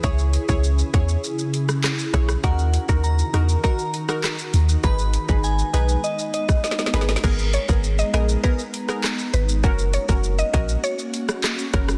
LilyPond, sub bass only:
\new Staff \with { instrumentName = "Sub bass" } { \clef bass \time 4/4 \key gis \minor \tempo 4 = 100 cis,8. cis,8. e,8 r4. b,,8 | dis,8. dis,8. e,8 r4. dis,8 | gis,,8. gis,,8. b,,8 r4. gis,,8 | gis,,8. gis,,8. ais,,8 r4. gis,,8 |
fis,,8. fis,,8. ais,,8 r4. fis,,8 | }